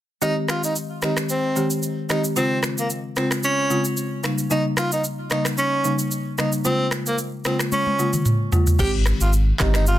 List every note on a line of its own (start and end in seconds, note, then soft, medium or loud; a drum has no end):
0.22 0.72 D#3 medium
0.22 0.72 G#3 medium
0.22 0.72 C4 medium
0.22 0.35 D#4 loud
0.22 0.72 G4 medium
0.22 shaker medium
0.48 0.62 F4 medium
0.48 finger snap medium
0.48 cross-stick medium
0.48 shaker medium
0.64 0.75 D#4 medium
0.64 shaker medium
0.76 shaker medium
1.02 1.23 D#3 medium
1.02 1.23 G#3 medium
1.02 1.23 C4 medium
1.02 1.16 D#4 medium
1.02 1.23 G4 medium
1.02 finger snap medium
1.02 cross-stick loud
1.02 shaker medium
1.17 finger snap medium
1.17 cross-stick medium
1.17 shaker medium
1.29 1.69 C4 medium
1.29 shaker medium
1.56 1.77 D#3 medium
1.56 1.77 G#3 medium
1.56 1.77 C4 medium
1.56 1.77 G4 medium
1.56 shaker medium
1.70 shaker medium
1.83 shaker medium
2.09 2.30 D#3 medium
2.09 2.30 G#3 medium
2.09 2.30 C4 medium
2.09 2.22 D#4 medium
2.09 2.30 G4 medium
2.09 finger snap medium
2.09 cross-stick medium
2.09 shaker medium
2.24 shaker medium
2.36 2.86 C#3 medium
2.36 2.86 G#3 medium
2.36 2.86 C4 medium
2.36 2.59 C4 medium
2.36 2.86 F4 loud
2.36 shaker medium
2.63 finger snap medium
2.63 cross-stick medium
2.63 shaker medium
2.78 2.89 A#3 medium
2.78 shaker medium
2.90 shaker medium
3.16 3.37 C#3 medium
3.16 3.37 G#3 medium
3.16 3.38 C4 medium
3.16 3.30 C4 medium
3.16 3.38 F4 medium
3.16 finger snap medium
3.16 cross-stick medium
3.16 shaker medium
3.31 finger snap medium
3.31 cross-stick medium
3.31 shaker medium
3.43 3.83 C#4 loud
3.43 shaker medium
3.70 3.91 C#3 medium
3.70 3.91 G#3 medium
3.70 3.91 C4 medium
3.70 3.91 F4 medium
3.70 shaker medium
3.85 shaker medium
3.97 shaker medium
4.23 4.44 C#3 medium
4.23 4.45 G3 medium
4.23 4.45 A#3 medium
4.23 4.45 D#4 medium
4.23 finger snap medium
4.23 cross-stick medium
4.23 shaker medium
4.38 shaker medium
4.50 5.00 C#3 medium
4.50 5.00 G3 medium
4.50 5.00 A#3 medium
4.50 5.00 D#4 medium
4.50 4.64 D#4 loud
4.50 shaker medium
4.77 4.90 F4 medium
4.77 finger snap medium
4.77 cross-stick medium
4.77 shaker medium
4.92 5.03 D#4 medium
4.92 shaker medium
5.04 shaker medium
5.31 5.52 C#3 medium
5.31 5.52 G3 medium
5.31 5.52 A#3 medium
5.31 5.52 D#4 medium
5.31 5.44 D#4 medium
5.31 finger snap medium
5.31 cross-stick medium
5.31 shaker medium
5.45 finger snap medium
5.45 cross-stick loud
5.45 shaker medium
5.58 5.97 C#4 loud
5.58 shaker medium
5.84 6.05 C#3 medium
5.84 6.05 G3 medium
5.84 6.05 A#3 medium
5.84 6.06 D#4 medium
5.84 shaker medium
5.99 shaker medium
6.11 shaker medium
6.38 6.59 C#3 medium
6.38 6.59 G3 medium
6.38 6.59 A#3 medium
6.38 6.59 D#4 medium
6.38 6.51 D#4 medium
6.38 finger snap medium
6.38 cross-stick medium
6.38 shaker medium
6.52 shaker medium
6.65 7.15 C#3 medium
6.65 7.15 G#3 medium
6.65 7.15 A#3 medium
6.65 6.88 C4 loud
6.65 7.15 F4 loud
6.65 shaker medium
6.91 finger snap medium
6.91 cross-stick medium
6.91 shaker medium
7.06 7.17 A#3 medium
7.06 shaker medium
7.18 shaker medium
7.45 7.66 C#3 medium
7.45 7.66 G#3 medium
7.45 7.66 A#3 medium
7.45 7.58 C4 medium
7.45 7.66 F4 medium
7.45 finger snap medium
7.45 cross-stick loud
7.45 shaker medium
7.59 finger snap medium
7.59 cross-stick medium
7.59 shaker medium
7.72 8.11 C#4 medium
7.72 high tom medium
7.72 shaker medium
7.87 high tom soft
7.99 8.20 C#3 medium
7.99 8.20 G#3 medium
7.99 8.20 A#3 medium
7.99 8.20 F4 medium
7.99 shaker medium
8.13 mid tom medium
8.13 shaker medium
8.26 mid tom medium
8.26 shaker medium
8.52 8.73 C#3 medium
8.52 8.73 G#3 medium
8.52 8.73 A#3 medium
8.52 8.73 F4 medium
8.52 floor tom medium
8.52 shaker medium
8.67 floor tom medium
8.67 shaker medium
8.79 9.13 G#1 loud
8.79 9.29 D#3 medium
8.79 9.29 G#3 medium
8.79 9.29 C4 medium
8.79 9.29 G4 loud
8.79 8.92 G4 loud
8.79 kick loud
8.79 crash loud
8.79 shaker medium
9.06 finger snap medium
9.06 cross-stick medium
9.06 shaker medium
9.21 9.52 G#1 loud
9.21 9.32 F4 medium
9.21 shaker medium
9.33 shaker medium
9.59 9.99 G1 medium
9.59 9.80 D#3 medium
9.59 9.80 G#3 medium
9.59 9.80 C4 medium
9.59 9.73 D#4 medium
9.59 9.81 G4 medium
9.59 finger snap medium
9.59 kick loud
9.59 cross-stick loud
9.59 clap loud
9.59 shaker medium
9.74 9.85 D#4 medium
9.74 finger snap medium
9.74 cross-stick loud
9.74 shaker medium
9.87 9.99 F4 medium
9.87 shaker medium